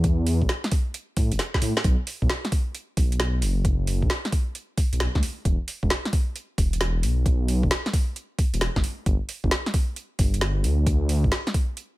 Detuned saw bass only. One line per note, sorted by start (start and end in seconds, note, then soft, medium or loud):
0.00 0.43 E2 medium
0.42 0.47 A1 medium
1.17 1.33 A2 medium
1.32 1.37 E1 loud
1.62 1.73 A2 loud
1.84 1.96 B1 loud
2.22 2.28 B1 medium
2.97 3.44 B1 loud
3.42 4.04 F#1 medium
4.02 4.08 B1 medium
4.93 5.08 B1 loud
5.15 5.21 D2 loud
5.45 5.56 E1 medium
5.83 5.88 E1 medium
6.58 7.05 E1 loud
7.03 7.65 B1 medium
7.63 7.69 E1 medium
8.54 8.68 E1 loud
8.76 8.82 G1 loud
9.06 9.17 G1 loud
9.44 9.49 G1 medium
10.19 10.66 G1 loud
10.64 11.26 D2 medium
11.24 11.30 G1 medium